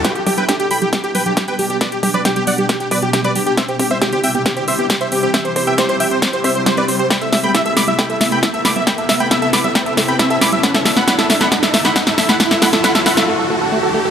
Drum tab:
HH |xxoxxxoxxxoxxxox|xxo-xxoxxxo-xxox|xxoxxxo-xxoxxxo-|xxo-xxoxxxoxxxo-|
SD |o---o---o---o---|o---o---o---o---|o---o---o---o---|o---o---o---o---|
BD |o-o-o---o---o---|o-o-o---o-o-o---|o-o-o---o---o---|o-o-o---o-o-o---|

HH |xxo-xxoxxxoxxxox|xxoxxxoxxxoxxxox|xxo-xxoxxxoxxxox|xxoxxxox--------|
SD |o-o-o-o-o-o-o-o-|o-o-o-o-o-o-o-o-|oooooooooooooooo|oooooooo--------|
BD |o-o-o---o---o---|o-o-o---o-o-o---|o-o-o---o---o---|o-o-o-----------|